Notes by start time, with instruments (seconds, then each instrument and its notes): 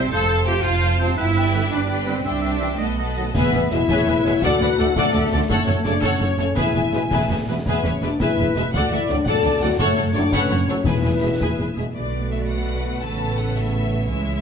Already playing: cello section C4, viola section C5, violin section C5 E5
0.10 double bass section F1, cello section A4, viola section C5, oboe C5, violin section F5 A5
0.14 flute section F5
0.28 oboe C5, viola section C5, violin section F5 A5, flute section F5
0.46 trombone section C3 F3, french horn section C4 F4, cello section G4, oboe C5, flute section F5, violin section G5
0.64 double bass section F1, cello section F4, oboe C5, violin section F5, flute section F5
0.81 oboe C5, viola section C5, violin section F5 A5, flute section F5
0.99 trombone section C3 F3, french horn section C4 F4, cello section C4, oboe C5, violin section C5, flute section F5
1.17 double bass section G1, cello section E4, oboe B4, violin section E5, flute section G5
1.37 viola section G4 B4, oboe B4, violin section D5 G5, flute section G5
1.53 trombone section D3 G3, french horn section B3 D4, oboe B4, flute section G5
1.72 double bass section G1, cello section D4, oboe B4, violin section D5, flute section G5
1.88 viola section G4 B4, oboe B4, violin section D5 G5, flute section G5
2.05 trombone section D3 G3, french horn section B3 D4, cello section C4, oboe B4, violin section C5, flute section G5
2.25 double bass section C2, cello section D4, viola section G4 C5, violin section D5 E5 G5, oboe E5, flute section G5
2.42 viola section G4 C5, oboe E5, violin section E5 G5, flute section G5
2.60 trombone section E3 G3, french horn section C4 D4, oboe E5, flute section G5
2.78 double bass section B1, cello section A3, violin section A4 F#5 A5, viola section B4 D#5, oboe D#5, flute section F#5
2.99 viola section B4 D#5, oboe D#5, flute section F#5, violin section F#5 A5
3.16 trombone section D#3 F#3, french horn section B3 F#4, oboe D#5, flute section F#5
3.33 double bass section E1, cello section E2, french horn section B3, viola section G#4 B4, violin section B4 E5 G#5, flute section E5, concert bass drum, snare, crash
3.53 double bass section E1, cello section E2, viola section G#4 B4, violin section E5 G#5, snare
3.71 double bass section E1, cello section E2, trombone section B2 G#3, french horn section E4, viola section G#4 B4, violin section B4 E5, snare
3.88 double bass section E1, cello section E2, viola section G#4 B4, flute section C#5, violin section E5 G#5, concert bass drum, snare
4.06 double bass section E1, cello section E2, viola section G#4 B4, flute section B4, violin section E5 G#5
4.25 double bass section E1, cello section E2, trombone section B2 G#3, viola section G#4 B4, violin section B4 E5, flute section C#5, snare
4.42 double bass section D2, cello section D2, french horn section F#4, viola section A4 D5, flute section D5, violin section D5 F#5, concert bass drum, snare
4.60 cello section D2, double bass section D2, viola section A4 D5, flute section B4, violin section D5 F#5
4.78 cello section D2, double bass section D2, trombone section D3 A3, flute section A4, viola section A4 D5, violin section A4 D5, snare
4.95 double bass section D2, cello section D2, french horn section A3, viola section A4 D5, violin section A4 D5 F#5, flute section F#5, concert bass drum, snare
5.13 cello section D2, double bass section D2, viola section A4 D5, violin section D5 F#5, flute section E5
5.31 cello section D2, double bass section D2, trombone section D3 A3, viola section A4 D5, violin section A4 D5, flute section D5
5.48 double bass section F#1, cello section F#2, french horn section A3, viola section A4, violin section A4 C#5 F#5, flute section C#5, concert bass drum, snare
5.67 double bass section F#1, cello section F#2, viola section A4, violin section C#5 F#5, snare
5.84 double bass section F#1, cello section F#2, trombone section C#3 A3, french horn section D4, viola section A4, violin section A4 C#5 D5, snare
6.01 double bass section F#1, cello section F#2, french horn section C#4, viola section A4, violin section C#5, concert bass drum, snare
6.05 violin section F#5
6.19 double bass section F#1, cello section F#2, viola section A4, violin section C#5 F#5
6.37 double bass section F#1, cello section F#2, trombone section C#3 A3, french horn section C#4, viola section A4, violin section A4 C#5, snare
6.55 double bass section E1, cello section E2, viola section G#4 B4, violin section E5 G#5, flute section G#5, concert bass drum, snare
6.59 french horn section E4
6.73 double bass section E1, cello section E2, viola section G#4 B4, violin section E5
6.77 violin section G#5
6.93 double bass section E1, cello section E2, trombone section B2 G#3, viola section G#4 B4, violin section B4 E5, snare
7.11 double bass section E1, cello section E2, viola section G#4 B4, violin section E5 G#5, concert bass drum, snare
7.29 double bass section E1, cello section E2, viola section G#4 B4, violin section E5 G#5
7.47 double bass section E1, cello section E2, trombone section B2 G#3, viola section G#4 B4, violin section B4 E5
7.65 double bass section E1, cello section E2, french horn section B3, viola section G#4 B4, violin section B4 E5 G#5, concert bass drum, snare, crash
7.83 double bass section E1, cello section E2, french horn section C#4, viola section G#4 B4, violin section C#5 E5 G#5, snare
8.02 double bass section E1, cello section E2, trombone section B2 G#3, french horn section D4, viola section G#4 B4, violin section B4 D5 E5, snare
8.19 double bass section E1, cello section E2, french horn section E4, viola section G#4 B4, flute section B4, violin section E5 G#5, concert bass drum, snare
8.37 double bass section E1, cello section E2, viola section G#4 B4, violin section E5 G#5
8.54 double bass section E1, cello section E2, trombone section B2 G#3, french horn section E4, viola section G#4 B4, violin section B4 E5, snare
8.72 cello section D2, double bass section D2, french horn section F#4, viola section A4, flute section D5, violin section F#5, concert bass drum, snare
8.76 viola section D5
8.91 cello section D2, double bass section D2, french horn section E4, viola section A4 D5, violin section E5 F#5
9.08 cello section D2, double bass section D2, trombone section A2 F#3, french horn section D4, viola section A4 D5, violin section D5, snare
9.24 cello section D2, double bass section D2, viola section A4 D5, french horn section A4, flute section D5, violin section F#5 A5, concert bass drum, snare
9.43 cello section D2, double bass section D2, viola section A4 D5, violin section F#5
9.60 cello section D2, double bass section D2, trombone section A2 F#3, french horn section F#4, viola section A4 D5, violin section D5 F#5
9.78 double bass section F#1, cello section F#2, french horn section A3, violin section A4 F#5, viola section A4 C#5, flute section C#5, concert bass drum, snare
9.97 double bass section F#1, cello section F#2, viola section A4 C#5, violin section F#5, snare
10.13 double bass section F#1, cello section F#2, trombone section A2 F#3, french horn section D4, viola section A4 C#5, violin section C#5 D5, snare
10.32 double bass section F#1, cello section F#2, french horn section C#4, viola section A4 C#5, flute section B4, violin section C#5 F#5, concert bass drum, snare
10.50 double bass section F#1, cello section F#2, viola section A4 C#5, flute section C#5, violin section F#5
10.67 double bass section F#1, cello section F#2, trombone section A2 F#3, flute section A4, viola section A4 C#5, violin section C#5, snare
10.84 double bass section E1, cello section E2, timpani E2, french horn section E4, viola section G#4, violin section B4 E5 G#5, flute section B4, concert bass drum, snare
11.03 double bass section E1, cello section E2, viola section G#4, violin section B4 G#5
11.22 double bass section E1, cello section E2, trombone section B2 G#3, viola section G#4, violin section G#4 E5
11.40 double bass section E1, cello section E2, viola section G#4, violin section B4 G#5, concert bass drum, snare
11.58 double bass section E1, cello section E2, viola section G#4, violin section B4 G#5
11.76 double bass section E1, cello section E2, trombone section B2 G#3, viola section G#4, violin section G#4 E5
11.94 double bass section B1, cello section B2, trombone section D3 A3, viola section A3 F#4, violin section B4 D5
12.32 violin section E5
12.47 violin section F#5
13.02 double bass section A1, cello section A2, trombone section C#3 B3, viola section A4, violin section C#5 A5
13.38 violin section F#5
13.57 violin section E5
14.08 cello section C#2, double bass section C#2, trombone section E3 G#3, viola section G#3 E4, violin section G#4 E5